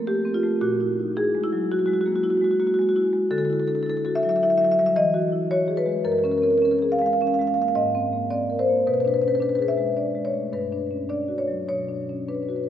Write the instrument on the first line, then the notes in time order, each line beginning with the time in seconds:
marimba
Already playing: A#2
0.07 A3 G4
0.25 C4
0.34 F4
0.43 A3
0.61 A#2 F#4
0.80 E4
1.00 D#4
1.16 E4 G#4
1.35 G#3
1.44 E4
1.53 F#3
1.71 E4 F#4
1.79 F#4
1.86 G#3 F#4
1.93 F#4
2.01 F#4
2.06 A#3 F#4
2.16 F#4
2.23 E4 F#4
2.30 F#4
2.37 F#4
2.41 G#3 F#4
2.51 F#4
2.60 A#3 F#4
2.67 F#4
2.74 F#4
2.79 G#3 F#4
2.89 F#4
2.96 E4 F#4
3.13 G#3
3.31 D3 A4
3.38 A4
3.45 A4
3.50 E4 A4
3.60 A4
3.68 D4 A4
3.75 A4
3.83 E4 A4
3.90 A4
3.97 A4
4.05 F#4 A4
4.15 E5
4.23 F#3 E5
4.29 E5
4.36 E5
4.43 E4 E5
4.50 E5
4.58 F#3 E5
4.64 E5
4.72 E5
4.79 G3 E5
4.86 E5
4.96 E3 D#5
5.14 F#4
5.32 E4
5.51 F#4 C#5
5.68 G#4
5.77 B4
5.86 G#3
6.04 F#2 A#4
6.12 A#4
6.18 A#4
6.24 C#4 A#4
6.32 A#4
6.38 A#4
6.42 C4 A#4
6.50 A#4
6.58 A#4
6.62 C#4 A#4
6.71 A#4
6.79 G#4 A#4
6.92 F5
6.99 G#3 F5
7.06 F5
7.13 F5
7.21 C#4 F5
7.27 F5
7.34 F5
7.39 G#3 F5
7.47 F5
7.54 A#3 F5
7.62 F5
7.68 F5
7.75 G#2 D#5
7.95 C4
8.13 A#3
8.30 C4 D5
8.50 A#4
8.59 C5
8.69 A#3
8.87 B2 B4
8.94 B4
9.00 B4
9.05 D4 B4
9.14 B4
9.22 C#4 B4
9.28 B4
9.35 B4
9.40 D4 B4
9.49 B4
9.55 G#4 B4
9.62 B4
9.68 E5
9.77 G#3
9.97 D4 D5
10.15 G#3
10.25 C#5
10.34 A3
10.53 G2 B4
10.72 D4
10.91 C#4
11.09 D4 D5
11.28 F#4
11.38 C#5
11.48 F#3
11.68 B2 C#5
11.89 D4
12.09 C#4
12.28 D4 B4
12.35 B4
12.43 B4
12.49 F#4 B4
12.56 B4
12.64 B4